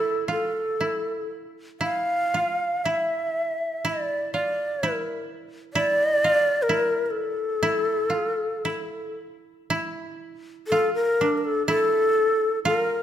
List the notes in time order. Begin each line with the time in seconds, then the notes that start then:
Already playing: E4 A4
0.28 F4 A4
0.81 E4
1.80 E4 F5
2.34 F4
2.84 E4 E5
3.85 E4 D5
4.33 F4 D5
4.83 E4
4.94 A#4
5.74 E4 D5
6.24 F4
6.62 A#4
6.69 E4
7.06 A#4
7.11 A4
7.63 E4
8.10 F4
8.65 E4
9.70 E4
10.68 A4
10.72 F4
10.94 A#4
11.21 D4
11.37 A#4
11.45 A4
11.67 E4 A4
12.65 F4 A#4